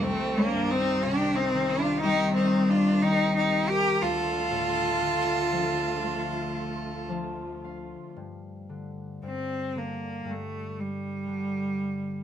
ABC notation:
X:1
M:4/4
L:1/8
Q:1/4=59
K:Dphr
V:1 name="Fiddle"
(3C D E (3G E F (3G E F (3G G B | A6 z2 | z8 |]
V:2 name="Cello"
(3A, B, C (3D C D (3E C D (3E E G | F6 z2 | z2 C B, A, G,3 |]
V:3 name="String section" clef=bass
[C,E,G,]8 | [D,A,F]8 | z8 |]
V:4 name="Harp"
z8 | z6 a f | z8 |]
V:5 name="Harp" clef=bass
C,, G,, C, E, G,2 E,2 | D,, A,, D, F, A,2 F,2 | G,, D, G,, D, G,,2 D,2 |]